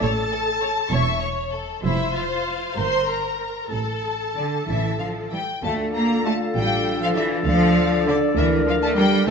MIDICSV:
0, 0, Header, 1, 10, 480
1, 0, Start_track
1, 0, Key_signature, -1, "minor"
1, 0, Tempo, 614125
1, 9, Time_signature, 6, 3, 24, 8
1, 2409, Tempo, 633580
1, 4809, Tempo, 604230
1, 7234, End_track
2, 0, Start_track
2, 0, Title_t, "Violin section"
2, 0, Program_c, 0, 48
2, 9, Note_on_c, 0, 81, 100
2, 708, Note_off_c, 0, 81, 0
2, 723, Note_on_c, 0, 85, 101
2, 961, Note_off_c, 0, 85, 0
2, 1447, Note_on_c, 0, 76, 88
2, 1668, Note_off_c, 0, 76, 0
2, 1685, Note_on_c, 0, 77, 79
2, 2160, Note_on_c, 0, 84, 106
2, 2167, Note_off_c, 0, 77, 0
2, 2407, Note_off_c, 0, 84, 0
2, 2410, Note_on_c, 0, 82, 81
2, 2884, Note_on_c, 0, 81, 78
2, 2891, Note_off_c, 0, 82, 0
2, 4073, Note_off_c, 0, 81, 0
2, 4814, Note_on_c, 0, 74, 64
2, 4994, Note_off_c, 0, 74, 0
2, 5534, Note_on_c, 0, 74, 79
2, 5716, Note_off_c, 0, 74, 0
2, 6258, Note_on_c, 0, 74, 79
2, 6434, Note_off_c, 0, 74, 0
2, 6976, Note_on_c, 0, 74, 85
2, 7153, Note_off_c, 0, 74, 0
2, 7234, End_track
3, 0, Start_track
3, 0, Title_t, "Violin section"
3, 0, Program_c, 1, 48
3, 15, Note_on_c, 1, 73, 73
3, 78, Note_off_c, 1, 73, 0
3, 245, Note_on_c, 1, 69, 63
3, 308, Note_off_c, 1, 69, 0
3, 479, Note_on_c, 1, 73, 79
3, 541, Note_off_c, 1, 73, 0
3, 717, Note_on_c, 1, 76, 74
3, 953, Note_off_c, 1, 76, 0
3, 958, Note_on_c, 1, 73, 67
3, 1199, Note_off_c, 1, 73, 0
3, 1199, Note_on_c, 1, 69, 62
3, 1440, Note_off_c, 1, 69, 0
3, 1443, Note_on_c, 1, 72, 85
3, 2152, Note_off_c, 1, 72, 0
3, 2166, Note_on_c, 1, 70, 61
3, 2891, Note_off_c, 1, 70, 0
3, 2895, Note_on_c, 1, 69, 58
3, 3370, Note_off_c, 1, 69, 0
3, 3379, Note_on_c, 1, 74, 58
3, 3440, Note_off_c, 1, 74, 0
3, 3620, Note_on_c, 1, 76, 67
3, 3852, Note_on_c, 1, 77, 52
3, 3855, Note_off_c, 1, 76, 0
3, 3913, Note_off_c, 1, 77, 0
3, 4102, Note_on_c, 1, 79, 60
3, 4335, Note_off_c, 1, 79, 0
3, 4342, Note_on_c, 1, 81, 84
3, 4403, Note_off_c, 1, 81, 0
3, 4584, Note_on_c, 1, 82, 78
3, 4810, Note_off_c, 1, 82, 0
3, 4816, Note_on_c, 1, 81, 86
3, 4879, Note_off_c, 1, 81, 0
3, 5062, Note_on_c, 1, 79, 93
3, 5413, Note_off_c, 1, 79, 0
3, 5424, Note_on_c, 1, 77, 87
3, 5471, Note_off_c, 1, 77, 0
3, 5541, Note_on_c, 1, 76, 77
3, 5604, Note_off_c, 1, 76, 0
3, 5779, Note_on_c, 1, 77, 86
3, 6249, Note_off_c, 1, 77, 0
3, 6267, Note_on_c, 1, 74, 78
3, 6330, Note_off_c, 1, 74, 0
3, 6501, Note_on_c, 1, 76, 87
3, 6565, Note_off_c, 1, 76, 0
3, 6742, Note_on_c, 1, 77, 84
3, 6787, Note_off_c, 1, 77, 0
3, 6854, Note_on_c, 1, 81, 92
3, 6901, Note_off_c, 1, 81, 0
3, 6975, Note_on_c, 1, 79, 100
3, 7209, Note_off_c, 1, 79, 0
3, 7234, End_track
4, 0, Start_track
4, 0, Title_t, "Flute section"
4, 0, Program_c, 2, 73
4, 4337, Note_on_c, 2, 77, 62
4, 5746, Note_off_c, 2, 77, 0
4, 5773, Note_on_c, 2, 74, 69
4, 7209, Note_off_c, 2, 74, 0
4, 7234, End_track
5, 0, Start_track
5, 0, Title_t, "Clarinet"
5, 0, Program_c, 3, 71
5, 4341, Note_on_c, 3, 69, 65
5, 6498, Note_on_c, 3, 70, 81
5, 6510, Note_off_c, 3, 69, 0
5, 7207, Note_off_c, 3, 70, 0
5, 7234, End_track
6, 0, Start_track
6, 0, Title_t, "Viola section"
6, 0, Program_c, 4, 48
6, 7, Note_on_c, 4, 69, 85
6, 707, Note_off_c, 4, 69, 0
6, 721, Note_on_c, 4, 73, 80
6, 784, Note_off_c, 4, 73, 0
6, 1439, Note_on_c, 4, 64, 80
6, 1663, Note_off_c, 4, 64, 0
6, 1678, Note_on_c, 4, 65, 61
6, 2154, Note_off_c, 4, 65, 0
6, 2163, Note_on_c, 4, 72, 88
6, 2403, Note_off_c, 4, 72, 0
6, 2409, Note_on_c, 4, 70, 59
6, 2880, Note_off_c, 4, 70, 0
6, 2889, Note_on_c, 4, 69, 68
6, 4075, Note_off_c, 4, 69, 0
6, 4813, Note_on_c, 4, 65, 60
6, 4814, Note_on_c, 4, 69, 65
6, 4994, Note_off_c, 4, 65, 0
6, 4994, Note_off_c, 4, 69, 0
6, 5533, Note_on_c, 4, 69, 73
6, 5537, Note_on_c, 4, 65, 72
6, 5715, Note_off_c, 4, 69, 0
6, 5717, Note_off_c, 4, 65, 0
6, 6254, Note_on_c, 4, 69, 69
6, 6256, Note_on_c, 4, 62, 72
6, 6432, Note_off_c, 4, 69, 0
6, 6433, Note_off_c, 4, 62, 0
6, 6966, Note_on_c, 4, 62, 85
6, 6971, Note_on_c, 4, 70, 76
6, 7147, Note_off_c, 4, 62, 0
6, 7150, Note_off_c, 4, 70, 0
6, 7234, End_track
7, 0, Start_track
7, 0, Title_t, "French horn section"
7, 0, Program_c, 5, 60
7, 4341, Note_on_c, 5, 62, 80
7, 4343, Note_on_c, 5, 65, 71
7, 5750, Note_off_c, 5, 65, 0
7, 5779, Note_on_c, 5, 69, 80
7, 6495, Note_off_c, 5, 69, 0
7, 6500, Note_on_c, 5, 70, 84
7, 7181, Note_off_c, 5, 62, 0
7, 7214, Note_off_c, 5, 70, 0
7, 7234, End_track
8, 0, Start_track
8, 0, Title_t, "Cello section"
8, 0, Program_c, 6, 48
8, 8, Note_on_c, 6, 45, 81
8, 583, Note_off_c, 6, 45, 0
8, 720, Note_on_c, 6, 40, 77
8, 1300, Note_off_c, 6, 40, 0
8, 1441, Note_on_c, 6, 41, 84
8, 2025, Note_off_c, 6, 41, 0
8, 2160, Note_on_c, 6, 43, 68
8, 2748, Note_off_c, 6, 43, 0
8, 2884, Note_on_c, 6, 45, 67
8, 3344, Note_off_c, 6, 45, 0
8, 3373, Note_on_c, 6, 50, 77
8, 3599, Note_off_c, 6, 50, 0
8, 3618, Note_on_c, 6, 52, 66
8, 3621, Note_on_c, 6, 49, 52
8, 3681, Note_off_c, 6, 49, 0
8, 3854, Note_off_c, 6, 52, 0
8, 3857, Note_on_c, 6, 50, 53
8, 3857, Note_on_c, 6, 53, 66
8, 3918, Note_off_c, 6, 50, 0
8, 4094, Note_off_c, 6, 53, 0
8, 4095, Note_on_c, 6, 52, 53
8, 4096, Note_on_c, 6, 55, 74
8, 4155, Note_off_c, 6, 52, 0
8, 4157, Note_off_c, 6, 55, 0
8, 4338, Note_on_c, 6, 57, 94
8, 4570, Note_off_c, 6, 57, 0
8, 4572, Note_on_c, 6, 58, 84
8, 4804, Note_off_c, 6, 58, 0
8, 4810, Note_on_c, 6, 57, 90
8, 4873, Note_off_c, 6, 57, 0
8, 5058, Note_on_c, 6, 55, 80
8, 5411, Note_off_c, 6, 55, 0
8, 5422, Note_on_c, 6, 53, 95
8, 5536, Note_on_c, 6, 52, 89
8, 5538, Note_off_c, 6, 53, 0
8, 5774, Note_off_c, 6, 52, 0
8, 5776, Note_on_c, 6, 53, 112
8, 6247, Note_off_c, 6, 53, 0
8, 6255, Note_on_c, 6, 50, 91
8, 6319, Note_off_c, 6, 50, 0
8, 6489, Note_on_c, 6, 52, 92
8, 6724, Note_off_c, 6, 52, 0
8, 6725, Note_on_c, 6, 53, 98
8, 6774, Note_off_c, 6, 53, 0
8, 6858, Note_on_c, 6, 57, 115
8, 6966, Note_on_c, 6, 55, 111
8, 6972, Note_off_c, 6, 57, 0
8, 7205, Note_off_c, 6, 55, 0
8, 7234, End_track
9, 0, Start_track
9, 0, Title_t, "Bassoon"
9, 0, Program_c, 7, 70
9, 4340, Note_on_c, 7, 50, 70
9, 7181, Note_off_c, 7, 50, 0
9, 7234, End_track
10, 0, Start_track
10, 0, Title_t, "Double bass section"
10, 0, Program_c, 8, 48
10, 5, Note_on_c, 8, 33, 88
10, 582, Note_off_c, 8, 33, 0
10, 717, Note_on_c, 8, 28, 81
10, 1299, Note_off_c, 8, 28, 0
10, 1433, Note_on_c, 8, 29, 91
10, 2021, Note_off_c, 8, 29, 0
10, 2159, Note_on_c, 8, 31, 72
10, 2748, Note_off_c, 8, 31, 0
10, 2883, Note_on_c, 8, 33, 69
10, 3477, Note_off_c, 8, 33, 0
10, 3621, Note_on_c, 8, 33, 69
10, 4203, Note_off_c, 8, 33, 0
10, 4339, Note_on_c, 8, 38, 88
10, 4913, Note_off_c, 8, 38, 0
10, 5050, Note_on_c, 8, 33, 86
10, 5637, Note_off_c, 8, 33, 0
10, 5771, Note_on_c, 8, 38, 95
10, 6352, Note_off_c, 8, 38, 0
10, 6490, Note_on_c, 8, 38, 96
10, 7069, Note_off_c, 8, 38, 0
10, 7208, Note_on_c, 8, 33, 98
10, 7234, Note_off_c, 8, 33, 0
10, 7234, End_track
0, 0, End_of_file